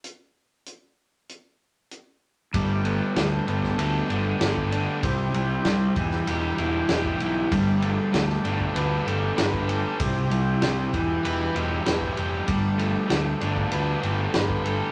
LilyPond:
<<
  \new Staff \with { instrumentName = "Overdriven electric guitar" } { \time 4/4 \key g \major \tempo 4 = 96 r1 | g8 b8 g8 b8 a'8 d'8 a'8 d'8 | c8 g8 g8 e8 g'8 e'8 g'8 e'8 | g8 a8 a8 d'8 b'8 a'8 b'8 a'8 |
c8 g8 c'8 e8 b'8 g'8 b'8 g'8 | g8 a8 a8 d'8 b'8 a'8 b'8 a'8 | }
  \new Staff \with { instrumentName = "Transistor combo organ" } { \time 4/4 \key g \major << { r1 | g'1~ | g'1~ | g'1~ |
g'1~ | g'1 | } \\ { r1 | d'1 | e'1 | d'1 |
e'4. e'2~ e'8 | d'1 | } >> }
  \new Staff \with { instrumentName = "Transistor combo organ" } { \time 4/4 \key g \major << { r1 | b1 | c'4. b2~ b8~ | b1 |
c'4. b2~ b8~ | b1 | } \\ { r1 | a1 | g4. g2~ g8 | a1 |
g1 | a1 | } >> }
  \new Staff \with { instrumentName = "Fingered electric bass" } { \clef bass \time 4/4 \key g \major r1 | g,,4 d,8 g,,8 d,8 g,,8 g,,4 | c,8 c,8 c,8 e,,8 e,,8 e,,8 e,,8 b,,8 | g,,4 d,8 g,,8 d,8 g,,8 g,,4 |
c,8 c,8 c,8 e,,8 e,,8 e,,8 e,,8 f,,8 | g,,4 d,8 g,,8 d,8 g,,8 g,,4 | }
  \new DrumStaff \with { instrumentName = "Drums" } \drummode { \time 4/4 hh4 hh4 hh4 hh4 | <bd cymr>8 cymr8 <cymr sn>8 cymr16 <bd sn>16 cymr8 cymr8 <cymr sn>16 bd16 cymr8 | <bd cymr>8 cymr8 <cymr sn>8 <bd cymr>16 sn16 cymr8 cymr8 <cymr sn>16 bd16 cymr8 | <bd cymr>8 cymr8 <cymr sn>16 sn16 cymr16 bd16 cymr8 cymr8 <cymr sn>16 bd16 cymr8 |
<bd cymr>8 cymr8 <cymr sn>8 <bd cymr>8 cymr8 cymr8 <cymr sn>16 bd16 cymr8 | <bd cymr>8 cymr8 <cymr sn>8 cymr16 bd16 cymr8 cymr8 <cymr sn>16 bd16 cymr8 | }
>>